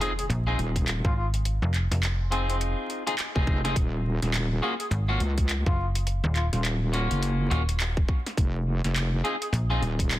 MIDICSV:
0, 0, Header, 1, 7, 480
1, 0, Start_track
1, 0, Tempo, 576923
1, 1210, Time_signature, 4, 2, 24, 8
1, 8480, End_track
2, 0, Start_track
2, 0, Title_t, "Trumpet"
2, 0, Program_c, 0, 56
2, 6, Note_on_c, 0, 68, 93
2, 100, Note_off_c, 0, 68, 0
2, 151, Note_on_c, 0, 68, 78
2, 214, Note_off_c, 0, 68, 0
2, 872, Note_on_c, 0, 65, 90
2, 934, Note_off_c, 0, 65, 0
2, 962, Note_on_c, 0, 65, 79
2, 1058, Note_off_c, 0, 65, 0
2, 1925, Note_on_c, 0, 60, 94
2, 2020, Note_off_c, 0, 60, 0
2, 2070, Note_on_c, 0, 60, 78
2, 2133, Note_off_c, 0, 60, 0
2, 3845, Note_on_c, 0, 68, 94
2, 3940, Note_off_c, 0, 68, 0
2, 3991, Note_on_c, 0, 68, 77
2, 4054, Note_off_c, 0, 68, 0
2, 4715, Note_on_c, 0, 65, 92
2, 4881, Note_off_c, 0, 65, 0
2, 5287, Note_on_c, 0, 65, 86
2, 5380, Note_off_c, 0, 65, 0
2, 5431, Note_on_c, 0, 65, 75
2, 5494, Note_off_c, 0, 65, 0
2, 7690, Note_on_c, 0, 68, 97
2, 7782, Note_off_c, 0, 68, 0
2, 7828, Note_on_c, 0, 68, 74
2, 7892, Note_off_c, 0, 68, 0
2, 8480, End_track
3, 0, Start_track
3, 0, Title_t, "Clean electric guitar"
3, 0, Program_c, 1, 27
3, 5, Note_on_c, 1, 68, 109
3, 7, Note_on_c, 1, 65, 87
3, 11, Note_on_c, 1, 63, 76
3, 16, Note_on_c, 1, 60, 91
3, 98, Note_off_c, 1, 60, 0
3, 98, Note_off_c, 1, 63, 0
3, 98, Note_off_c, 1, 65, 0
3, 99, Note_off_c, 1, 68, 0
3, 389, Note_on_c, 1, 65, 82
3, 392, Note_on_c, 1, 68, 101
3, 397, Note_on_c, 1, 63, 78
3, 400, Note_on_c, 1, 60, 82
3, 489, Note_off_c, 1, 60, 0
3, 489, Note_off_c, 1, 63, 0
3, 489, Note_off_c, 1, 65, 0
3, 489, Note_off_c, 1, 68, 0
3, 1925, Note_on_c, 1, 65, 80
3, 1929, Note_on_c, 1, 68, 88
3, 1934, Note_on_c, 1, 63, 62
3, 1938, Note_on_c, 1, 60, 69
3, 2518, Note_off_c, 1, 60, 0
3, 2519, Note_off_c, 1, 63, 0
3, 2519, Note_off_c, 1, 65, 0
3, 2519, Note_off_c, 1, 68, 0
3, 2551, Note_on_c, 1, 65, 82
3, 2554, Note_on_c, 1, 68, 107
3, 2558, Note_on_c, 1, 63, 84
3, 2563, Note_on_c, 1, 60, 89
3, 2613, Note_off_c, 1, 60, 0
3, 2613, Note_off_c, 1, 68, 0
3, 2614, Note_off_c, 1, 63, 0
3, 2614, Note_off_c, 1, 65, 0
3, 2790, Note_on_c, 1, 65, 81
3, 2792, Note_on_c, 1, 68, 93
3, 2795, Note_on_c, 1, 63, 78
3, 2800, Note_on_c, 1, 60, 79
3, 2998, Note_off_c, 1, 63, 0
3, 2998, Note_off_c, 1, 65, 0
3, 2998, Note_off_c, 1, 68, 0
3, 2999, Note_off_c, 1, 60, 0
3, 3031, Note_on_c, 1, 65, 78
3, 3033, Note_on_c, 1, 68, 98
3, 3036, Note_on_c, 1, 63, 74
3, 3038, Note_on_c, 1, 60, 87
3, 3117, Note_off_c, 1, 60, 0
3, 3117, Note_off_c, 1, 68, 0
3, 3118, Note_off_c, 1, 63, 0
3, 3118, Note_off_c, 1, 65, 0
3, 3847, Note_on_c, 1, 66, 113
3, 3849, Note_on_c, 1, 65, 87
3, 3851, Note_on_c, 1, 61, 89
3, 3855, Note_on_c, 1, 58, 90
3, 3939, Note_off_c, 1, 61, 0
3, 3939, Note_off_c, 1, 65, 0
3, 3939, Note_off_c, 1, 66, 0
3, 3940, Note_off_c, 1, 58, 0
3, 4230, Note_on_c, 1, 65, 87
3, 4233, Note_on_c, 1, 66, 103
3, 4238, Note_on_c, 1, 61, 80
3, 4241, Note_on_c, 1, 58, 79
3, 4329, Note_off_c, 1, 58, 0
3, 4329, Note_off_c, 1, 61, 0
3, 4329, Note_off_c, 1, 65, 0
3, 4329, Note_off_c, 1, 66, 0
3, 5763, Note_on_c, 1, 65, 65
3, 5767, Note_on_c, 1, 66, 80
3, 5771, Note_on_c, 1, 61, 66
3, 5776, Note_on_c, 1, 58, 68
3, 6229, Note_off_c, 1, 58, 0
3, 6229, Note_off_c, 1, 61, 0
3, 6229, Note_off_c, 1, 65, 0
3, 6229, Note_off_c, 1, 66, 0
3, 6242, Note_on_c, 1, 66, 87
3, 6245, Note_on_c, 1, 65, 71
3, 6250, Note_on_c, 1, 61, 71
3, 6254, Note_on_c, 1, 58, 66
3, 6337, Note_off_c, 1, 58, 0
3, 6337, Note_off_c, 1, 61, 0
3, 6337, Note_off_c, 1, 65, 0
3, 6337, Note_off_c, 1, 66, 0
3, 7689, Note_on_c, 1, 68, 102
3, 7692, Note_on_c, 1, 65, 88
3, 7695, Note_on_c, 1, 63, 77
3, 7698, Note_on_c, 1, 60, 85
3, 7780, Note_off_c, 1, 60, 0
3, 7780, Note_off_c, 1, 63, 0
3, 7780, Note_off_c, 1, 65, 0
3, 7780, Note_off_c, 1, 68, 0
3, 8071, Note_on_c, 1, 65, 88
3, 8073, Note_on_c, 1, 68, 91
3, 8076, Note_on_c, 1, 63, 72
3, 8081, Note_on_c, 1, 60, 85
3, 8169, Note_off_c, 1, 63, 0
3, 8169, Note_off_c, 1, 65, 0
3, 8169, Note_off_c, 1, 68, 0
3, 8170, Note_off_c, 1, 60, 0
3, 8480, End_track
4, 0, Start_track
4, 0, Title_t, "FM bass"
4, 0, Program_c, 2, 39
4, 246, Note_on_c, 2, 34, 99
4, 472, Note_off_c, 2, 34, 0
4, 870, Note_on_c, 2, 32, 97
4, 1329, Note_off_c, 2, 32, 0
4, 1350, Note_on_c, 2, 29, 98
4, 1568, Note_off_c, 2, 29, 0
4, 1592, Note_on_c, 2, 29, 99
4, 2290, Note_off_c, 2, 29, 0
4, 4085, Note_on_c, 2, 32, 100
4, 4312, Note_off_c, 2, 32, 0
4, 4711, Note_on_c, 2, 30, 97
4, 5169, Note_off_c, 2, 30, 0
4, 5190, Note_on_c, 2, 27, 108
4, 5408, Note_off_c, 2, 27, 0
4, 6249, Note_on_c, 2, 27, 91
4, 6714, Note_off_c, 2, 27, 0
4, 7927, Note_on_c, 2, 34, 100
4, 8153, Note_off_c, 2, 34, 0
4, 8480, End_track
5, 0, Start_track
5, 0, Title_t, "Wobble bass"
5, 0, Program_c, 3, 39
5, 484, Note_on_c, 3, 27, 100
5, 848, Note_off_c, 3, 27, 0
5, 2793, Note_on_c, 3, 29, 97
5, 3114, Note_off_c, 3, 29, 0
5, 3130, Note_on_c, 3, 27, 103
5, 3490, Note_off_c, 3, 27, 0
5, 3511, Note_on_c, 3, 27, 94
5, 3833, Note_off_c, 3, 27, 0
5, 4326, Note_on_c, 3, 37, 98
5, 4689, Note_off_c, 3, 37, 0
5, 5431, Note_on_c, 3, 27, 97
5, 5889, Note_off_c, 3, 27, 0
5, 5910, Note_on_c, 3, 30, 102
5, 6232, Note_off_c, 3, 30, 0
5, 6968, Note_on_c, 3, 29, 102
5, 7330, Note_off_c, 3, 29, 0
5, 7349, Note_on_c, 3, 29, 92
5, 7672, Note_off_c, 3, 29, 0
5, 8168, Note_on_c, 3, 27, 103
5, 8480, Note_off_c, 3, 27, 0
5, 8480, End_track
6, 0, Start_track
6, 0, Title_t, "Impact"
6, 0, Program_c, 4, 103
6, 0, Note_on_c, 4, 60, 75
6, 1209, Note_off_c, 4, 60, 0
6, 8480, End_track
7, 0, Start_track
7, 0, Title_t, "Drums"
7, 11, Note_on_c, 9, 42, 38
7, 94, Note_off_c, 9, 42, 0
7, 156, Note_on_c, 9, 42, 57
7, 239, Note_off_c, 9, 42, 0
7, 252, Note_on_c, 9, 42, 68
7, 335, Note_off_c, 9, 42, 0
7, 492, Note_on_c, 9, 42, 38
7, 575, Note_off_c, 9, 42, 0
7, 631, Note_on_c, 9, 36, 65
7, 633, Note_on_c, 9, 42, 57
7, 714, Note_off_c, 9, 36, 0
7, 716, Note_off_c, 9, 42, 0
7, 729, Note_on_c, 9, 39, 123
7, 729, Note_on_c, 9, 42, 70
7, 813, Note_off_c, 9, 39, 0
7, 813, Note_off_c, 9, 42, 0
7, 871, Note_on_c, 9, 36, 105
7, 954, Note_off_c, 9, 36, 0
7, 1113, Note_on_c, 9, 42, 55
7, 1196, Note_off_c, 9, 42, 0
7, 1209, Note_on_c, 9, 42, 69
7, 1292, Note_off_c, 9, 42, 0
7, 1450, Note_on_c, 9, 39, 39
7, 1450, Note_on_c, 9, 42, 37
7, 1533, Note_off_c, 9, 39, 0
7, 1533, Note_off_c, 9, 42, 0
7, 1594, Note_on_c, 9, 38, 37
7, 1594, Note_on_c, 9, 42, 57
7, 1677, Note_off_c, 9, 38, 0
7, 1677, Note_off_c, 9, 42, 0
7, 1691, Note_on_c, 9, 39, 114
7, 1691, Note_on_c, 9, 42, 67
7, 1774, Note_off_c, 9, 39, 0
7, 1774, Note_off_c, 9, 42, 0
7, 1930, Note_on_c, 9, 42, 39
7, 2014, Note_off_c, 9, 42, 0
7, 2077, Note_on_c, 9, 42, 56
7, 2160, Note_off_c, 9, 42, 0
7, 2172, Note_on_c, 9, 42, 68
7, 2255, Note_off_c, 9, 42, 0
7, 2412, Note_on_c, 9, 42, 39
7, 2495, Note_off_c, 9, 42, 0
7, 2556, Note_on_c, 9, 42, 60
7, 2639, Note_off_c, 9, 42, 0
7, 2649, Note_on_c, 9, 39, 127
7, 2649, Note_on_c, 9, 42, 73
7, 2733, Note_off_c, 9, 39, 0
7, 2733, Note_off_c, 9, 42, 0
7, 2792, Note_on_c, 9, 36, 103
7, 2875, Note_off_c, 9, 36, 0
7, 2888, Note_on_c, 9, 36, 118
7, 2972, Note_off_c, 9, 36, 0
7, 3035, Note_on_c, 9, 38, 42
7, 3035, Note_on_c, 9, 42, 58
7, 3118, Note_off_c, 9, 38, 0
7, 3118, Note_off_c, 9, 42, 0
7, 3128, Note_on_c, 9, 36, 114
7, 3131, Note_on_c, 9, 42, 71
7, 3211, Note_off_c, 9, 36, 0
7, 3214, Note_off_c, 9, 42, 0
7, 3515, Note_on_c, 9, 38, 37
7, 3515, Note_on_c, 9, 42, 53
7, 3598, Note_off_c, 9, 38, 0
7, 3598, Note_off_c, 9, 42, 0
7, 3610, Note_on_c, 9, 39, 121
7, 3610, Note_on_c, 9, 42, 67
7, 3694, Note_off_c, 9, 39, 0
7, 3694, Note_off_c, 9, 42, 0
7, 3993, Note_on_c, 9, 42, 57
7, 4076, Note_off_c, 9, 42, 0
7, 4089, Note_on_c, 9, 42, 68
7, 4172, Note_off_c, 9, 42, 0
7, 4328, Note_on_c, 9, 42, 37
7, 4411, Note_off_c, 9, 42, 0
7, 4472, Note_on_c, 9, 42, 58
7, 4473, Note_on_c, 9, 36, 69
7, 4555, Note_off_c, 9, 42, 0
7, 4556, Note_off_c, 9, 36, 0
7, 4570, Note_on_c, 9, 39, 127
7, 4570, Note_on_c, 9, 42, 69
7, 4653, Note_off_c, 9, 39, 0
7, 4653, Note_off_c, 9, 42, 0
7, 4712, Note_on_c, 9, 36, 113
7, 4795, Note_off_c, 9, 36, 0
7, 4954, Note_on_c, 9, 42, 56
7, 5037, Note_off_c, 9, 42, 0
7, 5049, Note_on_c, 9, 42, 66
7, 5132, Note_off_c, 9, 42, 0
7, 5289, Note_on_c, 9, 39, 40
7, 5289, Note_on_c, 9, 42, 37
7, 5372, Note_off_c, 9, 39, 0
7, 5372, Note_off_c, 9, 42, 0
7, 5432, Note_on_c, 9, 38, 37
7, 5432, Note_on_c, 9, 42, 53
7, 5515, Note_off_c, 9, 38, 0
7, 5515, Note_off_c, 9, 42, 0
7, 5530, Note_on_c, 9, 39, 115
7, 5530, Note_on_c, 9, 42, 65
7, 5613, Note_off_c, 9, 39, 0
7, 5613, Note_off_c, 9, 42, 0
7, 5769, Note_on_c, 9, 42, 36
7, 5853, Note_off_c, 9, 42, 0
7, 5914, Note_on_c, 9, 42, 53
7, 5997, Note_off_c, 9, 42, 0
7, 6011, Note_on_c, 9, 42, 66
7, 6094, Note_off_c, 9, 42, 0
7, 6251, Note_on_c, 9, 42, 36
7, 6334, Note_off_c, 9, 42, 0
7, 6397, Note_on_c, 9, 42, 54
7, 6480, Note_off_c, 9, 42, 0
7, 6492, Note_on_c, 9, 39, 125
7, 6492, Note_on_c, 9, 42, 68
7, 6575, Note_off_c, 9, 39, 0
7, 6575, Note_off_c, 9, 42, 0
7, 6631, Note_on_c, 9, 36, 106
7, 6715, Note_off_c, 9, 36, 0
7, 6727, Note_on_c, 9, 36, 115
7, 6810, Note_off_c, 9, 36, 0
7, 6876, Note_on_c, 9, 38, 40
7, 6876, Note_on_c, 9, 42, 52
7, 6960, Note_off_c, 9, 38, 0
7, 6960, Note_off_c, 9, 42, 0
7, 6968, Note_on_c, 9, 36, 117
7, 6972, Note_on_c, 9, 42, 63
7, 7051, Note_off_c, 9, 36, 0
7, 7055, Note_off_c, 9, 42, 0
7, 7358, Note_on_c, 9, 38, 38
7, 7358, Note_on_c, 9, 42, 50
7, 7441, Note_off_c, 9, 38, 0
7, 7441, Note_off_c, 9, 42, 0
7, 7454, Note_on_c, 9, 39, 117
7, 7454, Note_on_c, 9, 42, 61
7, 7537, Note_off_c, 9, 39, 0
7, 7537, Note_off_c, 9, 42, 0
7, 7694, Note_on_c, 9, 42, 35
7, 7777, Note_off_c, 9, 42, 0
7, 7836, Note_on_c, 9, 42, 49
7, 7919, Note_off_c, 9, 42, 0
7, 7935, Note_on_c, 9, 42, 65
7, 8018, Note_off_c, 9, 42, 0
7, 8175, Note_on_c, 9, 42, 34
7, 8259, Note_off_c, 9, 42, 0
7, 8313, Note_on_c, 9, 36, 67
7, 8318, Note_on_c, 9, 42, 51
7, 8396, Note_off_c, 9, 36, 0
7, 8401, Note_off_c, 9, 42, 0
7, 8411, Note_on_c, 9, 39, 127
7, 8411, Note_on_c, 9, 42, 67
7, 8480, Note_off_c, 9, 39, 0
7, 8480, Note_off_c, 9, 42, 0
7, 8480, End_track
0, 0, End_of_file